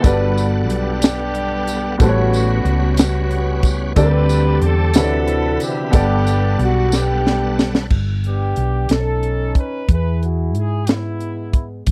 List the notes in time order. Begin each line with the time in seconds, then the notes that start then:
0.00 G1 G2 G3 B3 A4 F#5, kick, closed hi-hat, tambourine
0.06 D4 F#4 B4 D5
0.38 closed hi-hat, tambourine
0.68 B1 G4, closed hi-hat
0.72 B3 D4
1.02 snare, closed hi-hat, tambourine
1.35 closed hi-hat
1.67 closed hi-hat, tambourine
1.97 A1 A2 G3 B3 C#4 F#4 A4 B4, kick, closed hi-hat, tambourine
2.02 B3 C#4 F#4 C5
2.09 C#5
2.34 closed hi-hat, tambourine
2.65 C#2, closed hi-hat
2.97 B3 C#4 F#4, snare, closed hi-hat, tambourine
3.31 closed hi-hat
3.63 kick, closed hi-hat, tambourine
3.96 D2 D3 G3 C4 D4 G4 A4 B4 D5, kick, closed hi-hat, tambourine
4.29 closed hi-hat, tambourine
4.62 E2 A4, closed hi-hat
4.94 D2 C3 D3 E3 E4 B4 F#5, snare, closed hi-hat, tambourine
4.98 C4 F#4 A4 C#5
5.04 D5
5.28 closed hi-hat
5.60 B3 D4 G4, closed hi-hat, tambourine
5.91 G1 G2 G3 B3 A4 F#5, kick, closed hi-hat, tambourine
5.95 D5
6.27 closed hi-hat, tambourine
6.59 B1, closed hi-hat
6.63 F#4
6.92 B3 D4 G4, snare, tambourine
7.27 snare
7.59 snare, tambourine
7.75 snare
7.91 G1, kick, crash
8.24 B3 D4 G4, closed hi-hat
8.56 B1, closed hi-hat
8.89 B1 C#4 D#4 A4, snare, closed hi-hat
9.23 closed hi-hat
9.55 B4, kick, closed hi-hat
9.89 E2 E4 G#4 B4, kick, closed hi-hat
10.23 F#4, closed hi-hat
10.55 G#2 G#4, closed hi-hat
10.87 G#3 B3, snare, closed hi-hat
10.91 E4
11.20 closed hi-hat
11.53 kick, closed hi-hat
11.87 E2, kick, closed hi-hat